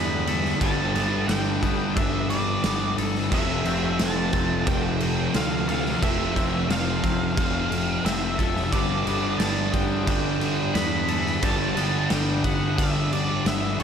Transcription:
Already playing: picked electric bass E2, overdriven electric guitar G2 D3 G3 B3 D4, distorted electric guitar G2 D3 G3, clean electric guitar G3 B3 D4, lead electric guitar B5
0.27 distorted electric guitar D3 G3, clean electric guitar A4, crash
0.45 snare
0.60 picked electric bass G1, distorted electric guitar G2 D3 G3, clean electric guitar G3, lead electric guitar A5, kick, crash
0.94 picked electric bass G1, distorted electric guitar D3 G3, clean electric guitar B3, snare, crash
1.28 picked electric bass G1, distorted electric guitar G2 D3 G3, clean electric guitar G3, lead electric guitar G5, snare, crash
1.62 picked electric bass G1, distorted electric guitar D3 G3, clean electric guitar B3, kick, crash
1.96 picked electric bass G1, distorted electric guitar G2 D3 G3, clean electric guitar D4, lead electric guitar E5, kick, crash
2.30 distorted electric guitar D3 G3, clean electric guitar G3, lead electric guitar D5, crash
2.64 picked electric bass G1, distorted electric guitar G2 D3 G3, clean electric guitar B3, snare, crash
2.98 picked electric bass G1, distorted electric guitar D3 G3, clean electric guitar A4, crash
3.15 snare
3.31 picked electric bass F1, overdriven electric guitar F2 C3 F3 A3 C4, distorted electric guitar F2 C3 F3, lead electric guitar E5, kick, crash
3.65 picked electric bass F1, distorted electric guitar C3 F3, clean electric guitar C4, crash
3.99 picked electric bass F1, distorted electric guitar F2 C3 F3, lead electric guitar A5, snare, crash
4.33 picked electric bass F1, distorted electric guitar C3 F3, clean electric guitar C4, kick, crash
4.67 picked electric bass F1, distorted electric guitar F2 C3 F3, lead electric guitar G5, kick, crash
5.00 distorted electric guitar C3 F3, crash
5.34 picked electric bass D2, distorted electric guitar F2 C3 F3, clean electric guitar C4, lead electric guitar F5, snare, crash
5.68 distorted electric guitar C3 F3, clean electric guitar A4, lead electric guitar F5, crash
5.86 snare
6.02 picked electric bass F1, distorted electric guitar F2 C3 F3, lead electric guitar E5, kick, crash
6.35 picked electric bass F1, distorted electric guitar C3 F3, clean electric guitar C4, kick, snare, crash
6.69 picked electric bass F1, distorted electric guitar F2 C3 F3, lead electric guitar F5, snare, crash
7.03 picked electric bass F1, distorted electric guitar C3 F3, clean electric guitar C4, kick, crash
7.37 picked electric bass F1, distorted electric guitar F2 C3 F3, kick, crash
7.71 distorted electric guitar C3 F3, crash
8.05 picked electric bass F1, distorted electric guitar F2 C3 F3, clean electric guitar C4, lead electric guitar E5, snare, crash
8.38 picked electric bass F1, distorted electric guitar C3 F3, clean electric guitar A4, kick, crash
8.56 snare
8.72 picked electric bass G1, overdriven electric guitar G2 D3 G3 B3 D4, distorted electric guitar G2 D3 G3, clean electric guitar G3, lead electric guitar D5, kick, crash
9.06 picked electric bass G1, distorted electric guitar D3 G3, clean electric guitar B3, crash
9.39 picked electric bass G1, distorted electric guitar G2 D3, clean electric guitar G3, lead electric guitar A5, snare, crash
9.43 distorted electric guitar G3
9.73 picked electric bass G1, distorted electric guitar D3 G3, clean electric guitar B3, lead electric guitar G5, kick, crash
10.06 picked electric bass G1, distorted electric guitar G2 D3 G3, clean electric guitar D4, kick, crash
10.40 distorted electric guitar D3 G3, clean electric guitar G3, crash
10.74 picked electric bass E2, distorted electric guitar G2 D3 G3, clean electric guitar B3, lead electric guitar B5, snare, crash
11.08 distorted electric guitar D3 G3, clean electric guitar A4, crash
11.26 snare
11.42 picked electric bass G1, distorted electric guitar G2 D3 G3, clean electric guitar G3, lead electric guitar A5, kick, crash
11.76 picked electric bass G1, distorted electric guitar D3 G3, clean electric guitar B3, snare, crash
12.10 picked electric bass G1, distorted electric guitar G2 D3 G3, clean electric guitar G3, lead electric guitar G5, snare, crash
12.44 picked electric bass G1, distorted electric guitar D3 G3, clean electric guitar B3, lead electric guitar F#5, kick, crash
12.77 picked electric bass G1, distorted electric guitar G2 D3 G3, clean electric guitar D4, lead electric guitar E5, kick, crash
13.12 distorted electric guitar D3 G3, clean electric guitar G3, lead electric guitar D5, crash
13.45 picked electric bass G1, distorted electric guitar G2 D3 G3, clean electric guitar B3, lead electric guitar E5, snare, crash
13.79 picked electric bass G1, distorted electric guitar G3, lead electric guitar C#5, crash

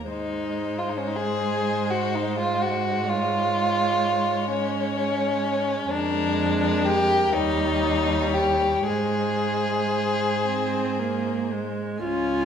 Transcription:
0.09 cello G#2, viola G#3, violin D#4 C5
0.78 violin F4
0.89 violin D#4
0.98 violin C#4
1.07 violin D#4
1.16 violin G#4
1.90 violin F#4
2.15 violin D#4
2.38 violin F4
2.62 violin F#4
3.09 violin F4 C#5
4.51 violin C#4
5.90 cello F2, viola G#3, violin D4 A#4
6.61 violin A#4
6.86 violin G4
7.33 cello D#2, viola G3, violin D#4 C#5
8.34 violin G4
8.87 cello G#2, viola G#3, violin G#4 C5
10.45 viola C4
11.00 viola A#3
11.53 viola G#3
12.02 cello C#2, violin C#4 G#5, viola F4

